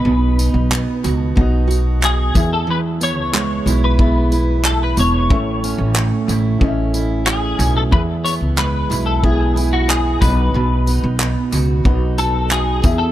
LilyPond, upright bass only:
\new Staff \with { instrumentName = "Upright bass" } { \clef bass \time 4/4 \key e \major \tempo 4 = 91 b,,8. b,,8 r16 cis,8 b,,4. e,8~ | e,8. cis,8. b,,2 e,,8 | a,,8. a,,8 r16 a,,8 a,,4. b,,8 | e,8. cis,8. b,,2 b,,8 |
b,,8. b,,8 r16 cis,8 b,,4. e,8 | }